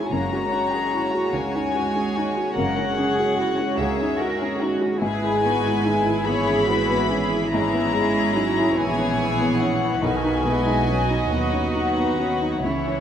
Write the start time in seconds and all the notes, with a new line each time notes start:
Already playing: G#2 C#4 D#4 E4 G#4 G#5
0.11 F#1 F#2 G#3 A#3 C#4 F#4 C#5 A#5
0.30 C#4 F#4
0.50 C#4 F#4
0.72 F#4 G#4
0.92 E4 F#4
1.11 C#4 F#4
1.30 C#2 A#3 C#4 G#5
1.53 C#4 D#4
1.74 F#4
1.94 C#4 G#4
2.14 D#4 F#4
2.34 C#4 F#4
2.56 F#1 F#2 A#3 A#4 F#5
2.75 C#4
2.95 C#3 F#4 G#4
3.16 F#4 G#4
3.36 E4 F#4
3.56 C#4 F#4
3.77 C#2 A#3 C#4 G#4 E5
3.99 C#4 D#4
4.19 F#4 A#4
4.40 C#4 G#4
4.61 D#4 F#4
4.81 C#4 F#4
5.00 G#1 G#2 G#3 E4 G#4 B4 G#5
5.23 E4
5.41 B3 D#4 F#4
5.64 E4
5.83 D#4 E4
6.06 E4
6.25 E3 B3 G#4 C#5 B5
6.49 C#4
6.69 E4 F#4 B4
6.91 B3
7.10 C#4 E4 G#4
7.33 E4
7.51 G#2 E3 C#4 E4 G#4 A#5
7.74 B3
7.93 G#3
8.15 E4
8.35 F#3 D#4
8.58 E4
8.75 A#1 E3 B3 G#4 C#5 G#5
8.98 C#4
9.19 E4
9.41 B3
9.59 C#4 F#5
9.83 E4
10.01 B1 D#3 D#4 F#4 B4 D#5 G#5
10.24 D#4
10.45 G#3 B3 E4
10.66 D#4
10.87 F#3 C#4 F#4
11.10 D#4
11.32 D#2 F#3 B3 D#4 B4 F#5
11.53 C#4
11.75 D#4
11.97 B3
12.18 C#4
12.42 D#4
12.64 C#2 E3 C#4 E4 C#5
12.88 C#4